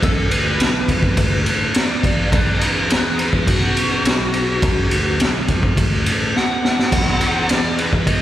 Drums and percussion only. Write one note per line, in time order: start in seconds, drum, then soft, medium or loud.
0.03 kick loud
0.03 ride medium
0.31 ride medium
0.60 snare loud
0.60 ride medium
0.88 kick medium
0.88 ride medium
1.03 kick medium
1.17 kick medium
1.17 ride medium
1.46 ride medium
1.74 snare loud
1.74 ride medium
2.03 kick medium
2.03 ride medium
2.32 kick loud
2.32 ride loud
2.61 ride medium
2.90 snare loud
2.90 ride medium
3.19 ride medium
3.33 kick medium
3.47 kick medium
3.47 ride medium
3.77 ride medium
4.05 snare loud
4.05 ride medium
4.34 ride medium
4.62 kick loud
4.62 ride medium
4.91 ride medium
5.20 snare loud
5.20 ride medium
5.48 kick medium
5.48 ride medium
5.63 kick medium
5.77 kick medium
5.77 ride medium
6.06 ride medium
6.36 snare medium
6.65 snare medium
6.79 snare medium
6.92 kick loud
6.92 ride loud
6.92 crash medium
7.21 ride medium
7.49 snare loud
7.49 ride loud
7.78 ride medium
7.93 kick medium
8.07 kick medium
8.07 ride medium